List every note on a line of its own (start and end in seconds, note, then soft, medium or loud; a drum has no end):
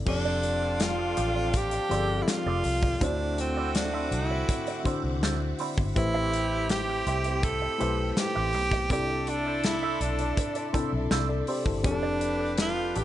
0.06 1.13 F1 loud
0.06 1.37 F3 medium
0.06 1.37 C4 medium
0.06 2.61 C4 medium
0.06 2.61 D4 medium
0.06 0.84 D4 loud
0.06 2.61 F4 medium
0.06 1.38 G4 medium
0.06 2.98 A4 medium
0.06 1.38 A4 medium
0.06 1.38 D5 medium
0.06 2.98 F5 medium
0.06 2.98 G5 medium
0.06 2.98 D6 medium
0.06 muted clean electric guitar stroke soft
0.06 kick loud
0.06 crash loud
0.25 0.42 C4 medium
0.25 0.42 G4 medium
0.25 0.43 A4 medium
0.25 0.43 D5 medium
0.43 muted clean electric guitar stroke soft
0.43 closed hi-hat medium
0.62 muted clean electric guitar stroke soft
0.80 1.58 F4 loud
0.80 muted clean electric guitar stroke soft
0.80 snare loud
0.80 closed hi-hat medium
0.99 muted clean electric guitar stroke soft
1.17 1.77 A1 medium
1.17 1.31 C4 medium
1.17 1.31 G4 medium
1.17 1.31 A4 medium
1.17 1.31 D5 medium
1.17 closed hi-hat medium
1.36 1.50 C4 soft
1.36 1.50 G4 medium
1.36 1.50 A4 soft
1.36 1.49 D5 medium
1.54 2.24 G4 loud
1.54 kick loud
1.54 closed hi-hat medium
1.71 muted clean electric guitar stroke soft
1.71 closed hi-hat medium
1.89 2.21 G1 loud
1.89 2.88 F3 medium
1.89 2.88 C4 medium
1.89 2.08 C4 medium
1.89 2.89 G4 medium
1.89 2.09 G4 medium
1.89 1.97 G#4 soft
1.89 2.09 A4 medium
1.89 2.89 D5 medium
1.89 2.08 D5 medium
1.89 closed hi-hat medium
1.97 2.92 A4 medium
2.10 muted clean electric guitar stroke soft
2.23 2.31 E4 medium
2.28 3.05 F4 loud
2.28 muted clean electric guitar stroke soft
2.28 snare loud
2.28 closed hi-hat medium
2.46 2.61 F1 medium
2.46 2.64 C4 medium
2.46 2.64 G4 medium
2.46 2.64 A4 medium
2.46 2.64 D5 medium
2.64 2.95 C2 medium
2.64 muted clean electric guitar stroke soft
2.64 open hi-hat medium
2.83 muted clean electric guitar stroke soft
2.83 kick medium
3.00 4.13 D2 loud
3.00 4.31 D3 medium
3.00 5.55 A3 medium
3.00 5.55 C4 medium
3.00 8.87 C4 medium
3.00 3.19 C4 medium
3.00 4.32 D4 medium
3.00 3.42 D4 loud
3.00 4.32 E4 medium
3.00 3.19 E4 medium
3.00 4.32 F#4 medium
3.00 5.55 F#4 medium
3.00 3.19 F#4 medium
3.00 4.32 C5 medium
3.00 3.19 D5 medium
3.00 5.93 E5 medium
3.00 5.93 F#5 medium
3.00 5.93 D6 medium
3.00 kick loud
3.00 closed hi-hat medium
3.21 muted clean electric guitar stroke soft
3.38 3.76 C4 medium
3.38 muted clean electric guitar stroke soft
3.38 closed hi-hat medium
3.57 3.71 C4 medium
3.57 3.71 E4 medium
3.57 3.71 F#4 medium
3.57 3.70 D5 medium
3.75 4.16 D4 medium
3.75 muted clean electric guitar stroke soft
3.75 snare loud
3.75 closed hi-hat medium
3.94 4.11 C4 medium
3.94 4.11 E4 medium
3.94 4.11 F#4 medium
3.94 4.11 E5 medium
4.11 4.41 C2 medium
4.11 4.87 E4 medium
4.11 muted clean electric guitar stroke soft
4.11 closed hi-hat medium
4.31 muted clean electric guitar stroke soft
4.49 muted clean electric guitar stroke soft
4.49 kick loud
4.49 closed hi-hat medium
4.67 muted clean electric guitar stroke soft
4.67 closed hi-hat medium
4.84 5.83 D3 medium
4.84 5.03 C4 medium
4.84 5.83 D4 medium
4.84 5.83 E4 medium
4.84 5.03 E4 medium
4.84 5.83 F#4 medium
4.84 5.04 F#4 medium
4.84 5.83 C5 medium
4.84 5.03 D5 medium
4.84 muted fingered electric bass stroke soft
4.84 kick medium
4.84 closed hi-hat medium
5.04 5.22 C2 medium
5.22 5.52 D2 loud
5.22 5.40 C4 medium
5.22 5.40 E4 medium
5.22 5.40 F#4 medium
5.22 5.40 D5 loud
5.22 snare loud
5.22 closed hi-hat medium
5.41 muted clean electric guitar stroke soft
5.59 5.73 C4 medium
5.59 5.73 E4 medium
5.59 5.74 F#4 medium
5.59 5.74 D5 medium
5.59 open hi-hat medium
5.78 5.92 G1 medium
5.78 muted clean electric guitar stroke soft
5.78 kick medium
5.96 7.03 A1 loud
5.96 7.26 A3 medium
5.96 8.50 C4 medium
5.96 7.26 E4 medium
5.96 8.50 E4 medium
5.96 6.66 E4 loud
5.96 7.26 G4 medium
5.96 8.50 G4 loud
5.96 13.04 A4 medium
5.96 7.27 B4 medium
5.96 7.27 C5 medium
5.96 8.87 G5 medium
5.96 8.88 B5 medium
5.96 muted clean electric guitar stroke soft
5.96 kick loud
5.96 closed hi-hat medium
6.14 6.32 C4 medium
6.14 6.32 G4 medium
6.14 6.32 B4 medium
6.14 6.32 E5 medium
6.33 muted clean electric guitar stroke soft
6.33 closed hi-hat medium
6.52 muted clean electric guitar stroke soft
6.69 7.46 G4 loud
6.69 muted clean electric guitar stroke soft
6.69 snare loud
6.69 closed hi-hat medium
6.89 muted clean electric guitar stroke soft
7.07 7.66 C2 medium
7.07 7.20 C4 medium
7.07 7.20 G4 medium
7.07 7.21 B4 medium
7.07 7.21 E5 medium
7.07 closed hi-hat medium
7.24 7.39 C4 medium
7.24 7.39 G4 soft
7.24 7.39 B4 medium
7.24 7.39 E5 medium
7.24 closed hi-hat medium
7.43 8.12 A4 loud
7.43 kick loud
7.43 closed hi-hat medium
7.62 muted clean electric guitar stroke soft
7.79 8.11 B1 medium
7.79 8.77 A3 medium
7.79 7.97 C4 medium
7.79 8.77 E4 medium
7.79 8.78 G4 medium
7.79 7.98 G4 medium
7.79 8.78 B4 medium
7.79 7.98 B4 medium
7.79 8.78 C5 medium
7.79 7.97 E5 medium
7.79 closed hi-hat medium
7.99 muted clean electric guitar stroke soft
8.12 8.21 A4 medium
8.17 8.92 G4 loud
8.17 muted clean electric guitar stroke soft
8.17 snare loud
8.17 closed hi-hat medium
8.35 8.54 A1 medium
8.35 8.53 C4 medium
8.35 8.53 G4 medium
8.35 8.53 B4 medium
8.35 8.53 E5 medium
8.53 8.90 B1 medium
8.53 muted clean electric guitar stroke soft
8.53 open hi-hat medium
8.71 muted clean electric guitar stroke soft
8.71 kick medium
8.71 snare soft
8.90 9.97 C2 loud
8.90 10.21 C3 medium
8.90 10.21 C4 medium
8.90 9.08 C4 medium
8.90 10.21 D4 medium
8.90 11.44 D4 medium
8.90 11.44 E4 medium
8.90 10.21 E4 medium
8.90 9.09 E4 medium
8.90 9.31 G4 loud
8.90 11.44 A4 medium
8.90 10.21 A4 medium
8.90 9.09 A4 medium
8.90 11.82 D5 medium
8.90 9.09 D5 medium
8.90 11.82 E5 medium
8.90 11.82 C6 medium
8.90 kick loud
8.90 closed hi-hat medium
9.10 muted clean electric guitar stroke soft
9.27 9.67 D4 medium
9.27 muted clean electric guitar stroke soft
9.27 closed hi-hat medium
9.46 9.60 C4 soft
9.46 9.60 E4 soft
9.46 9.60 A4 medium
9.46 9.60 D5 medium
9.64 10.03 E4 medium
9.64 snare loud
9.64 closed hi-hat medium
9.83 10.00 C4 medium
9.83 10.01 E4 medium
9.83 10.00 A4 medium
9.83 10.00 E5 medium
10.01 10.31 B1 medium
10.01 10.75 D4 medium
10.01 muted clean electric guitar stroke soft
10.01 closed hi-hat medium
10.19 muted clean electric guitar stroke soft
10.19 closed hi-hat soft
10.37 muted clean electric guitar stroke soft
10.37 kick loud
10.37 closed hi-hat medium
10.55 muted clean electric guitar stroke soft
10.55 closed hi-hat medium
10.73 11.72 C3 medium
10.73 11.72 C4 medium
10.73 10.91 C4 medium
10.73 11.72 D4 medium
10.73 10.92 E4 medium
10.73 11.11 E4 medium
10.73 10.92 A4 medium
10.73 11.11 A4 medium
10.73 10.92 D5 medium
10.73 muted fingered electric bass stroke soft
10.73 kick medium
10.73 closed hi-hat medium
10.93 11.08 B1 medium
10.93 muted clean electric guitar stroke soft
11.11 11.41 C2 medium
11.11 11.29 C4 medium
11.11 11.29 E4 medium
11.11 11.29 A4 medium
11.11 11.28 D5 medium
11.11 snare loud
11.11 closed hi-hat medium
11.29 11.47 A4 soft
11.29 11.47 D5 medium
11.29 muted clean electric guitar stroke soft
11.47 11.62 C4 medium
11.47 11.62 E4 medium
11.47 11.66 G4 medium
11.47 11.62 A4 medium
11.47 11.66 C5 medium
11.47 11.63 D5 medium
11.47 open hi-hat medium
11.65 11.84 G1 medium
11.65 12.01 E4 soft
11.65 11.90 A4 medium
11.65 muted clean electric guitar stroke soft
11.65 kick medium
11.83 12.91 F1 loud
11.83 13.04 F3 medium
11.83 13.04 C4 medium
11.83 13.04 D4 medium
11.83 12.55 D4 loud
11.83 13.04 G4 medium
11.83 11.91 G#4 medium
11.83 13.04 B4 medium
11.83 13.04 F5 medium
11.83 13.04 G5 medium
11.83 13.04 D6 medium
11.83 muted clean electric guitar stroke soft
11.83 kick loud
11.83 closed hi-hat medium
11.91 13.04 A4 medium
12.03 12.21 D4 medium
12.03 12.21 G4 medium
12.03 12.21 A4 medium
12.03 12.21 D5 medium
12.21 muted clean electric guitar stroke soft
12.21 closed hi-hat medium
12.40 muted clean electric guitar stroke soft
12.58 muted clean electric guitar stroke soft
12.58 snare loud
12.58 closed hi-hat medium
12.62 12.99 F4 loud
12.77 muted clean electric guitar stroke soft
12.96 13.04 A1 medium
12.96 13.04 D4 medium
12.96 13.04 G4 medium
12.96 13.04 A4 medium
12.96 13.04 D5 medium
12.96 closed hi-hat medium